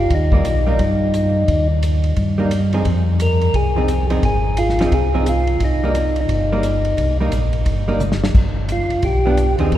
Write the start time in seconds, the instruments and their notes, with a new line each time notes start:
Already playing: tonewheel organ F4
0.10 tonewheel organ D#2, kick, ride
0.15 tonewheel organ D#4
0.32 hollow-body jazz guitar G3 A#3 D#4, kick
0.45 tonewheel organ B1, hi-hat pedal, ride
0.67 hollow-body jazz guitar G3 A#3 D#4
0.71 tonewheel organ D#4
0.79 tonewheel organ G2, kick, ride
1.14 hi-hat pedal, ride
1.48 tonewheel organ D#2, kick, ride
1.83 hi-hat pedal, ride
2.04 ride
2.16 tonewheel organ G2, kick, ride
2.38 hollow-body jazz guitar G3 A#3 D#4
2.51 hi-hat pedal, ride
2.73 hollow-body jazz guitar F3 C4 D#4 G#4, ride
2.85 tonewheel organ F2, kick, ride
3.20 tonewheel organ A#4, hi-hat pedal, ride
3.41 ride
3.54 tonewheel organ C2 G#4, kick, ride
3.76 hollow-body jazz guitar F3 C4 D#4 G#4
3.88 hi-hat pedal, ride
4.10 hollow-body jazz guitar F3 C4 D#4 G#4, ride
4.22 tonewheel organ G#1 G#4, kick, ride
4.57 tonewheel organ F4, hi-hat pedal, ride
4.69 snare
4.79 hollow-body jazz guitar F3 C4 D#4 G#4, snare, ride
4.92 tonewheel organ C2 G#4, kick, ride
5.14 hollow-body jazz guitar F3 C4 D#4 G#4
5.26 tonewheel organ F4, hi-hat pedal, ride
5.47 ride
5.60 tonewheel organ C2, kick, ride
5.64 tonewheel organ D#4
5.84 hollow-body jazz guitar G3 A#3 D#4
5.95 hi-hat pedal, ride
6.16 ride
6.21 tonewheel organ D#4
6.29 tonewheel organ G1, kick, ride
6.52 hollow-body jazz guitar G3 A#3 D#4
6.63 hi-hat pedal, ride
6.85 ride
6.97 tonewheel organ C2, kick, ride
7.20 hollow-body jazz guitar G3 A#3 D#4
7.32 tonewheel organ A#1, hi-hat pedal, ride
7.53 ride
7.65 tonewheel organ G1, kick, ride
7.88 hollow-body jazz guitar G3 A#3 D#4
8.00 hi-hat pedal, mid tom
8.12 snare
8.24 snare
8.34 tonewheel organ G1, kick, crash
8.69 tonewheel organ F4, hi-hat pedal, ride
8.90 tonewheel organ G1, ride
9.03 tonewheel organ B1 G4, kick, ride
9.26 hollow-body jazz guitar F3 B3 D4
9.37 hi-hat pedal, ride
9.58 tonewheel organ D#2, hollow-body jazz guitar F3 C4 D#4 G#4, ride
9.71 tonewheel organ F2, kick, ride